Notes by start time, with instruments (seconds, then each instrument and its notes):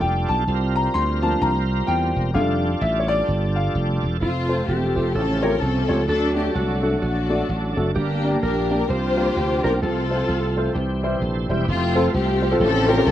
Already playing: tonewheel organ G3 D4 F4 A4
0.01 slap bass F1, grand piano G5
0.28 slap bass B1, grand piano A5
0.48 slap bass C2, tonewheel organ G3 C4 F4 A4
0.54 tonewheel organ A#4
0.76 grand piano A#5
0.94 slap bass D2, grand piano C6
1.22 grand piano F3 A#3 D4 A5
1.42 slap bass C2, grand piano A#5
1.87 slap bass E2, grand piano G5
2.16 slap bass E1
2.34 slap bass F1, tonewheel organ G3 D4 F4 G#4, grand piano G3 A3 D4 F5
2.40 tonewheel organ A4
2.81 slap bass A1, grand piano E5
2.99 grand piano C#5
3.08 grand piano D5
3.28 slap bass G1
3.56 grand piano F5
3.75 slap bass F1
4.03 slap bass E1
4.20 slap bass F1, tonewheel organ F3 A3 C4 A4, french horn section F3 A3 C4 F4, string section A3 C4 F4, electric slide guitar F4
4.48 grand piano A3 C4 F4 C5
4.68 slap bass E1, string section C4 G4, electric slide guitar G4
4.95 slap bass F1, grand piano A3 C4 F4 G4
5.13 slap bass A1, grand piano A2, tonewheel organ C#3 F3 A3 G4, french horn section C#3 G3, string section C4 C#4 A4, electric slide guitar A4
5.41 grand piano A3 F4 G4 C#5, string section A#4, electric slide guitar A#4
5.60 slap bass C2, string section C4 C#4 A4, electric slide guitar A4
5.88 slap bass C#2, grand piano A3 F4 G4 C#5
6.07 slap bass D2, grand piano D3, french horn section D3 F#3 A3 D4, tonewheel organ F#3 A3 D4 A4, string section D4 F#4 A4, electric slide guitar A4
6.36 grand piano A3 D4 F#4 D5, string section G4
6.54 slap bass C2, string section A3 D4 F#4, electric slide guitar F#4
6.82 grand piano A3 D4 F#4 A4, electric slide guitar F#4
7.02 slap bass A#1, string section A3 D4 F#4, electric slide guitar F#4
7.30 grand piano A3 D4 F#4 D5
7.49 slap bass A1
7.76 slap bass F#1, grand piano A3 D4 F#4 A4
7.95 slap bass G1, grand piano G2, french horn section D3 G3 A#3, tonewheel organ G3 A#3 D4 A#4, string section A#3 D4 G4, electric slide guitar G4
8.24 grand piano A#3 D4 G4 D5
8.43 slap bass A#1, string section D4 G4 A#4, electric slide guitar A#4
8.71 grand piano A#3 D4 G4 D5
8.88 slap bass C2, grand piano C3, tonewheel organ E3 C4 D4 A#4, french horn section F3 C4 D4, string section F4 G4 C5, electric slide guitar C5
8.95 tonewheel organ F3
9.16 grand piano A#3 D4 F4 C5
9.36 slap bass D2
9.64 slap bass B1, grand piano A#3 D4 F4 C5, electric slide guitar A#4, string section A#4
9.81 slap bass C2, grand piano C3, tonewheel organ F3 A3 C4 A4, french horn section A3 F4, string section C4 F4 A4, electric slide guitar A4
10.11 grand piano A3 C4 F4 C5
10.29 slap bass C2
10.57 grand piano A3 C4 F4 C5
10.74 slap bass C2, grand piano C3, tonewheel organ E3 G3 C4 G4, french horn section E3 G3 E4
11.03 grand piano G3 C4 E4 C5
11.21 slap bass A#1, tonewheel organ A4 C5
11.49 slap bass E1, grand piano G3 C4 E4 C5, tonewheel organ E4 G4 G5
11.68 slap bass F1, string section A3 C4 F4, tonewheel organ A3 C4 F4
11.95 grand piano C4 F4 A4
12.14 slap bass C2, string section C4 G4
12.42 grand piano C4 F4 C5
12.51 grand piano C4 F4 A4
12.60 slap bass A1, grand piano A2, tonewheel organ C#3 F3 A3 G4 C5, string section C4 C#4 A4
12.88 grand piano A3 C#4 F4 G4 C5, string section A#4
12.97 grand piano A3 C#4 F4 G4 C5
13.06 slap bass C2, string section C4 C#4 A4